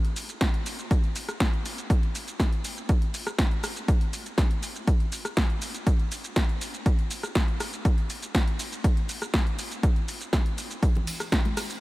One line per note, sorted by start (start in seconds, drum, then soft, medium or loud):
0.05 closed hi-hat soft
0.16 open hi-hat loud
0.16 shaker medium
0.29 closed hi-hat soft
0.29 shaker soft
0.41 kick loud
0.41 snare loud
0.41 closed hi-hat medium
0.41 shaker soft
0.54 closed hi-hat soft
0.66 open hi-hat loud
0.66 shaker medium
0.79 closed hi-hat soft
0.79 shaker soft
0.91 kick loud
0.91 closed hi-hat medium
0.91 shaker soft
1.04 closed hi-hat soft
1.16 open hi-hat loud
1.16 shaker medium
1.29 cross-stick medium
1.29 closed hi-hat soft
1.29 shaker soft
1.40 kick loud
1.40 snare loud
1.40 closed hi-hat medium
1.40 shaker soft
1.53 closed hi-hat soft
1.66 open hi-hat loud
1.66 shaker medium
1.78 closed hi-hat soft
1.78 shaker soft
1.90 kick loud
1.90 closed hi-hat medium
1.90 shaker soft
2.03 closed hi-hat soft
2.15 open hi-hat loud
2.15 shaker medium
2.28 closed hi-hat soft
2.28 shaker soft
2.40 kick loud
2.40 snare loud
2.40 closed hi-hat medium
2.40 shaker soft
2.53 closed hi-hat soft
2.65 open hi-hat loud
2.65 shaker medium
2.77 closed hi-hat soft
2.77 shaker soft
2.89 kick loud
2.89 closed hi-hat medium
2.89 shaker soft
3.02 closed hi-hat soft
3.14 open hi-hat loud
3.14 shaker medium
3.27 cross-stick medium
3.27 closed hi-hat soft
3.27 shaker soft
3.39 kick loud
3.39 snare loud
3.39 closed hi-hat medium
3.39 shaker soft
3.51 closed hi-hat soft
3.64 cross-stick medium
3.64 open hi-hat loud
3.64 shaker medium
3.76 closed hi-hat soft
3.76 shaker soft
3.88 kick loud
3.88 closed hi-hat medium
3.88 shaker soft
4.01 closed hi-hat soft
4.13 open hi-hat loud
4.13 shaker medium
4.26 closed hi-hat soft
4.26 shaker soft
4.38 kick loud
4.38 snare loud
4.38 closed hi-hat medium
4.38 shaker soft
4.51 closed hi-hat soft
4.63 open hi-hat loud
4.63 shaker medium
4.76 closed hi-hat soft
4.76 shaker soft
4.87 kick loud
4.87 closed hi-hat medium
4.87 shaker soft
5.00 closed hi-hat soft
5.12 open hi-hat loud
5.12 shaker medium
5.25 cross-stick medium
5.25 shaker soft
5.37 kick loud
5.37 snare loud
5.37 closed hi-hat medium
5.37 shaker soft
5.50 closed hi-hat soft
5.62 open hi-hat loud
5.62 shaker medium
5.75 closed hi-hat soft
5.75 shaker soft
5.87 kick loud
5.87 closed hi-hat medium
5.87 shaker soft
6.00 closed hi-hat soft
6.12 open hi-hat loud
6.12 shaker medium
6.24 closed hi-hat soft
6.24 shaker soft
6.36 kick loud
6.36 snare loud
6.36 closed hi-hat loud
6.36 shaker soft
6.49 closed hi-hat soft
6.61 open hi-hat loud
6.61 shaker medium
6.74 closed hi-hat soft
6.74 shaker soft
6.86 kick loud
6.86 closed hi-hat medium
6.86 shaker soft
6.99 closed hi-hat soft
7.11 open hi-hat loud
7.11 shaker medium
7.23 cross-stick medium
7.23 closed hi-hat soft
7.23 shaker soft
7.35 kick loud
7.35 snare loud
7.35 closed hi-hat loud
7.35 shaker soft
7.48 closed hi-hat soft
7.60 cross-stick medium
7.60 open hi-hat loud
7.60 shaker medium
7.73 closed hi-hat soft
7.73 shaker soft
7.85 kick loud
7.85 closed hi-hat medium
7.85 shaker soft
7.98 closed hi-hat soft
8.10 open hi-hat loud
8.10 shaker medium
8.23 closed hi-hat soft
8.23 shaker soft
8.35 kick loud
8.35 snare loud
8.35 closed hi-hat loud
8.35 shaker soft
8.48 closed hi-hat soft
8.59 open hi-hat loud
8.59 shaker medium
8.72 closed hi-hat soft
8.72 shaker soft
8.84 kick loud
8.84 closed hi-hat loud
8.84 shaker soft
8.97 closed hi-hat soft
9.09 open hi-hat loud
9.09 shaker medium
9.22 cross-stick medium
9.22 closed hi-hat soft
9.22 shaker soft
9.34 kick loud
9.34 snare loud
9.34 closed hi-hat medium
9.34 shaker soft
9.47 closed hi-hat soft
9.59 open hi-hat loud
9.59 shaker medium
9.72 closed hi-hat soft
9.72 shaker soft
9.83 kick loud
9.83 closed hi-hat loud
9.83 shaker soft
9.96 closed hi-hat soft
10.08 open hi-hat loud
10.08 shaker medium
10.21 closed hi-hat soft
10.21 shaker soft
10.33 kick loud
10.33 snare loud
10.33 closed hi-hat medium
10.33 shaker soft
10.46 closed hi-hat soft
10.58 open hi-hat loud
10.58 shaker medium
10.71 closed hi-hat soft
10.71 shaker soft
10.83 kick loud
10.83 closed hi-hat loud
10.83 tambourine soft
10.83 shaker soft
10.95 closed hi-hat soft
10.95 low conga medium
11.07 open hi-hat loud
11.07 ride medium
11.07 tambourine loud
11.07 shaker medium
11.20 cross-stick medium
11.20 closed hi-hat soft
11.20 tambourine medium
11.20 shaker soft
11.32 kick loud
11.32 snare loud
11.32 closed hi-hat loud
11.32 shaker soft
11.45 closed hi-hat soft
11.45 high conga loud
11.57 cross-stick medium
11.57 open hi-hat loud
11.57 ride medium
11.57 tambourine medium
11.57 shaker medium
11.70 closed hi-hat soft
11.70 tambourine medium
11.70 shaker soft